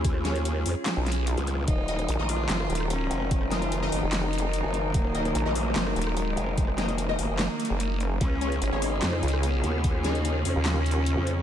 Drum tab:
HH |x---x-x-x---o---x---xx--x-x-x---|x---x-x-x---o---x---xx--x---x---|x---x-x-x---o---x---xx--x---x---|x---x-x-x---o---x---xx--x---x---|
CP |----------------x---------------|----------------x---------------|----------------x---------------|----------------x---------------|
SD |--r-o-----------o---o-----------|----------------o-r---r---------|--r-o-----------o---------------|----------------o-r---r---------|
BD |o-------------------------------|o-------------------------------|o-------------------------------|o-------------------------------|

HH |x---x-x-x---o---x---xx--x---x---|x---x-x-x---o---x---xx--x---x---|x---x-x-x---o---x---xx--x---x---|
CP |----------------x---------------|----------------x---------------|----------------x---------------|
SD |--r-o-----------o---------------|----------------o-r---r---------|--r-o-----------o---------------|
BD |o-------------------------------|o-------------------------------|o-------------------------------|